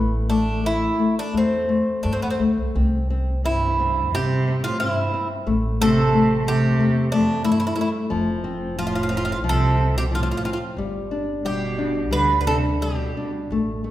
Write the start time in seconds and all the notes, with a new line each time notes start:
Already playing: A1 A3
0.29 A3 D4
0.64 A3 E4
0.99 A3
1.19 D4
1.34 E2 A3 C4
1.69 A3
2.03 G2 A3 D4
2.13 C4
2.22 E2 B3
2.30 C4
2.39 D2 A3
2.57 C2
2.75 C2 C4
3.10 C4
3.44 G2 C4 E4
3.80 C4
4.13 G2 C3 C4 G4
4.48 C4
4.64 A2 F4
4.80 G2 C4 E4
5.14 C4
5.47 A1 A3
5.81 C3 A3 A4
6.14 A3
6.47 C3 A3 G4
6.80 E2 A3
7.12 F2 A3 D4
7.44 G2 A3 E4
7.52 E4
7.60 E4
7.67 E4
7.76 A3 E4
7.81 E4
8.10 F1 F3
8.44 C4
8.79 A2 F3 F4
8.87 F4
8.95 F4
9.03 F4
9.09 C4 F4
9.17 F4
9.25 F4
9.32 F4
9.43 C2 C3 F3
9.49 A4
9.78 C4
9.97 B2 G4
10.11 A2 F3 F4
10.23 F4
10.31 F4
10.37 F4
10.44 C4 F4
10.53 F4
10.77 G1 G3
11.11 D4
11.45 B2 G3 G4
11.78 D4
12.11 D2 D3 G3 B4
12.40 D3 B4
12.47 C3 D4 A4
12.81 B2 G3 G4
13.17 D4
13.50 A1 A3
13.84 A3